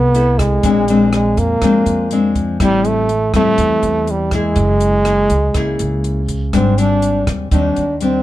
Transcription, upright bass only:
Already playing: C2
0.64 A#1
1.37 F2
1.62 F2
1.86 F2
2.60 A1
3.34 E2
3.58 E2
3.83 E2
4.56 F#1
5.30 C#2
5.55 C#2
5.80 C#2
6.53 G#1
7.27 D#2
7.51 D#2
7.77 D#2

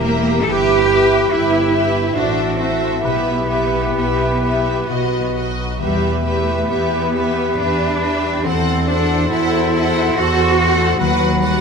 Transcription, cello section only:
Already playing: A#3
0.41 A4
0.47 G4
1.31 E4
2.14 D4
2.57 C4
3.03 B3
5.80 G3
6.24 A3
6.69 B3
7.59 D4
8.45 C4
8.87 D4
9.30 E4
10.17 F#4
10.99 F#3
11.42 G3

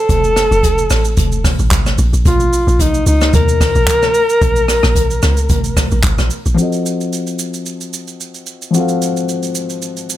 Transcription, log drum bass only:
0.09 F1
0.51 F1
0.90 A1
1.17 F1
1.59 A1
1.71 G#1
1.98 A#1
2.13 A#1
2.26 A#1
2.67 A#1
3.06 C#2
3.34 D#2
3.75 A#1
4.42 A#1
4.84 A#1
5.23 C#2
5.50 G#1
5.92 A#1
6.04 G#1
6.19 A#1
6.46 A#1

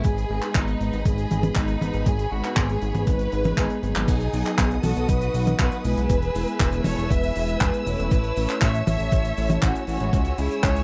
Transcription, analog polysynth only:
Already playing: G#3 B3 D#4 B4
0.30 G#3 B3 D#4 B4
0.80 G#3 B3 D#4 B4
1.31 G#3 B3 D#4 B4
1.81 G#3 B3 D#4 B4
2.32 G#3 B3 D#4 B4
2.82 G#3 B3 D#4 B4
3.32 G#3 B3 D#4 B4
3.83 F#3 B3 D#4 B4
4.33 F#3 B3 D#4 B4
4.84 F#3 B3 D#4 B4
5.34 F#3 B3 D#4 B4
5.84 G#3 B3 E4 B4
6.35 G#3 B3 E4 B4
6.85 G#3 B3 E4 B4
7.36 G#3 B3 E4 B4
7.86 A3 C#4 E4 C#5
8.37 A3 C#4 E4 C#5
8.87 A3 C#4 E4 C#5
9.37 A3 C#4 E4 C#5
9.88 G#3 C#4 E4 C#5
10.38 G#3 C#4 E4 C#5

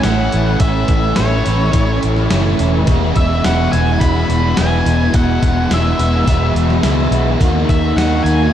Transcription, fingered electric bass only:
0.04 A1
0.34 A1
0.60 A1
0.89 A1
1.18 A1
1.47 A1
1.74 A1
2.04 A1
2.31 F#1
2.60 E1
2.88 E1
3.16 E1
3.45 E1
3.73 E1
4.01 E1
4.29 E1
4.58 E1
4.86 E1
5.14 E1
5.43 E1
5.71 E1
5.99 E1
6.27 E1
6.55 E1
6.83 C#2
7.11 B1
7.41 D#2
7.69 D#2
7.96 D#2
8.24 D#2

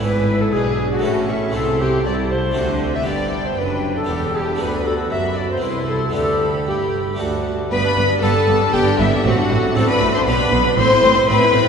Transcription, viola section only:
Already playing: E4
0.53 D4
1.03 C#4
1.55 E4
2.05 E4
2.55 D4
3.57 D4
4.09 G4
4.59 F#4
5.62 E4
6.14 G4
7.19 F#4
7.71 B3
7.84 D4
7.97 B3
8.10 D4
8.22 B3
8.35 D4
8.48 B3
8.61 D4
8.74 B3
8.87 D4
8.99 B3
9.11 D4
9.24 C4
9.37 D4
9.50 C4
9.63 D4
9.76 C4
9.89 D4
10.01 C4
10.14 D4
10.27 B3
10.40 D4
10.52 B3
10.64 D4
10.77 C4
10.90 E4
11.03 C4
11.16 E4
11.29 C4
11.41 E4
11.54 C4

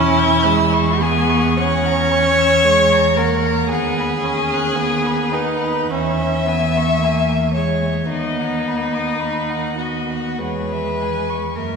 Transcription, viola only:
Already playing: C#4
0.46 G#3
1.00 B3
1.57 C#4
2.64 G#3
3.16 A#3
3.70 B3
4.23 C#4
4.76 B3
5.32 D#4
5.91 C#4
6.47 B3
7.01 A#3
7.56 G#3
8.10 B3
9.20 A#3
9.79 B3
10.39 G#3
11.56 A#3

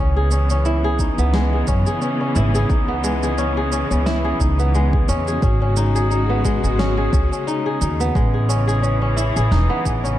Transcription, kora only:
Already playing: B3 C#4 D#4 G#4
0.17 G#4
0.32 C#4
0.51 C#4
0.66 E4
0.84 G#4
1.00 D#4
1.19 B3
1.34 G#3
1.53 G#4
1.68 C#4
1.87 G#4
2.02 C#4
2.21 C#4
2.36 E4
2.55 G#4
2.70 D#4
2.88 B3
3.04 G#3
3.23 G#4
3.38 C#4
3.57 G#4
3.72 C#4
3.91 C#4
4.06 E4
4.25 G#4
4.40 D#4
4.59 B3
4.75 G#3
4.93 G#4
5.09 C#4
5.28 G#4
5.43 C#4
5.62 C#4
5.77 D#4
5.95 G#4
6.10 D#4
6.30 B3
6.45 G#3
6.63 G#4
6.79 C#4
6.97 G#4
7.13 C#4
7.32 C#4
7.47 D#4
7.66 G#4
7.81 D#4
8.00 B3
8.15 G#3
8.34 G#4
8.49 C#4
8.68 G#4
8.82 C#4
9.02 C#4
9.17 E4
9.36 G#4
9.51 D#4
9.70 B3
9.85 G#4
10.04 C#4

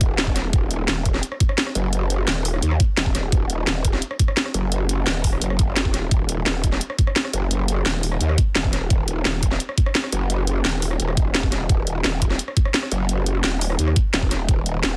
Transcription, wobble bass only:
0.01 D#1
0.53 D#1
0.88 D#1
1.75 F#1
2.28 D#1
2.63 D#2
2.97 D#1
3.32 D#1
3.67 D#1
4.54 F#1
5.07 D#1
5.42 F#1
5.94 D#1
6.11 D#1
6.46 D#1
7.33 F#1
7.86 D#1
8.21 D#2
8.56 D#1
8.90 D#1
9.25 D#1
10.13 F#1
10.65 D#1
11.00 D#1
11.17 D#1
11.69 D#1
12.04 D#1
12.92 F#1
13.44 D#1
13.79 D#2
14.14 D#1
14.49 D#1
14.83 D#1

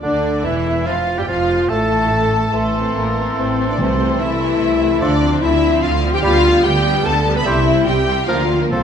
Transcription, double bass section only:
0.03 D2
0.45 E1
0.87 F1
1.29 F1
1.69 A1
2.53 A1
2.95 A1
3.37 A1
3.79 C2
4.20 C2
4.60 C2
5.02 D2
5.42 D2
5.83 D2
6.23 D2
6.64 D2
7.05 D2
7.46 C2
7.86 C2
8.28 D2
8.72 C2

